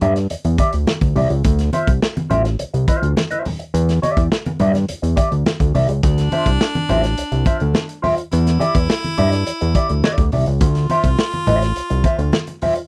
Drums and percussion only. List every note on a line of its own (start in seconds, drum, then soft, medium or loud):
0.01 closed hi-hat medium
0.01 low conga medium
0.16 snare soft
0.16 closed hi-hat medium
0.30 closed hi-hat loud
0.30 muted conga soft
0.44 closed hi-hat medium
0.44 muted conga soft
0.58 kick medium
0.58 closed hi-hat medium
0.58 high conga medium
0.73 closed hi-hat medium
0.87 snare loud
0.87 muted conga soft
0.87 high conga medium
1.01 kick medium
1.01 closed hi-hat medium
1.01 muted conga soft
1.16 open hi-hat medium
1.16 high conga medium
1.16 low conga medium
1.30 closed hi-hat medium
1.44 kick loud
1.44 closed hi-hat medium
1.44 muted conga soft
1.59 snare soft
1.59 closed hi-hat medium
1.73 closed hi-hat medium
1.73 high conga medium
1.87 kick medium
1.87 closed hi-hat medium
2.02 snare loud
2.02 muted conga soft
2.17 closed hi-hat soft
2.17 muted conga soft
2.17 high conga medium
2.31 closed hi-hat medium
2.31 low conga medium
2.45 snare soft
2.45 closed hi-hat medium
2.59 closed hi-hat loud
2.59 muted conga soft
2.74 closed hi-hat medium
2.88 kick medium
2.88 closed hi-hat medium
2.88 high conga medium
3.03 closed hi-hat medium
3.17 snare loud
3.17 high conga medium
3.31 closed hi-hat medium
3.31 muted conga soft
3.45 open hi-hat medium
3.45 high conga medium
3.45 low conga medium
3.60 closed hi-hat medium
3.74 closed hi-hat medium
3.89 snare soft
3.89 closed hi-hat medium
4.03 closed hi-hat medium
4.03 high conga medium
4.17 kick medium
4.17 closed hi-hat medium
4.32 snare loud
4.32 muted conga soft
4.46 closed hi-hat soft
4.46 muted conga soft
4.46 high conga medium
4.59 closed hi-hat medium
4.59 low conga medium
4.74 snare soft
4.74 closed hi-hat medium
4.74 high conga medium
4.88 closed hi-hat medium
4.88 muted conga soft
5.03 closed hi-hat medium
5.03 muted conga soft
5.17 kick medium
5.17 closed hi-hat medium
5.17 high conga medium
5.32 closed hi-hat medium
5.46 snare loud
5.46 high conga medium
5.60 kick loud
5.60 closed hi-hat medium
5.60 muted conga soft
5.75 open hi-hat medium
5.75 high conga medium
5.75 low conga medium
5.89 closed hi-hat medium
6.03 kick loud
6.03 closed hi-hat medium
6.03 muted conga soft
6.18 snare soft
6.18 closed hi-hat medium
6.18 muted conga soft
6.32 closed hi-hat medium
6.32 high conga medium
6.46 kick medium
6.46 closed hi-hat medium
6.61 snare loud
6.75 closed hi-hat soft
6.75 muted conga soft
6.75 high conga medium
6.89 closed hi-hat medium
6.89 low conga medium
7.04 snare soft
7.04 closed hi-hat medium
7.18 closed hi-hat loud
7.32 closed hi-hat medium
7.32 muted conga soft
7.45 kick medium
7.45 closed hi-hat medium
7.45 high conga medium
7.60 closed hi-hat soft
7.74 snare loud
7.74 high conga medium
7.89 closed hi-hat medium
8.04 open hi-hat medium
8.04 high conga medium
8.04 low conga medium
8.18 closed hi-hat medium
8.32 closed hi-hat loud
8.32 muted conga soft
8.47 snare soft
8.47 closed hi-hat medium
8.47 muted conga soft
8.60 closed hi-hat medium
8.60 high conga medium
8.75 kick medium
8.75 closed hi-hat medium
8.90 snare loud
8.90 muted conga soft
9.04 closed hi-hat soft
9.04 high conga medium
9.18 closed hi-hat medium
9.18 low conga medium
9.32 snare soft
9.32 closed hi-hat medium
9.47 closed hi-hat loud
9.61 closed hi-hat medium
9.75 kick medium
9.75 closed hi-hat medium
9.75 high conga medium
9.89 closed hi-hat medium
10.04 snare loud
10.04 muted conga soft
10.04 high conga medium
10.18 kick loud
10.18 closed hi-hat medium
10.32 open hi-hat medium
10.32 high conga medium
10.32 low conga medium
10.46 closed hi-hat medium
10.61 kick loud
10.61 closed hi-hat medium
10.75 snare soft
10.75 closed hi-hat medium
10.90 closed hi-hat medium
10.90 high conga medium
11.04 kick medium
11.04 closed hi-hat medium
11.19 snare loud
11.33 closed hi-hat soft
11.33 high conga medium
11.47 closed hi-hat medium
11.47 low conga medium
11.62 snare soft
11.62 closed hi-hat medium
11.76 closed hi-hat medium
11.90 closed hi-hat medium
12.04 kick medium
12.04 closed hi-hat medium
12.04 high conga medium
12.19 closed hi-hat soft
12.32 snare loud
12.32 high conga medium
12.47 closed hi-hat medium
12.47 muted conga soft
12.62 open hi-hat medium
12.62 high conga medium
12.62 low conga medium
12.76 closed hi-hat medium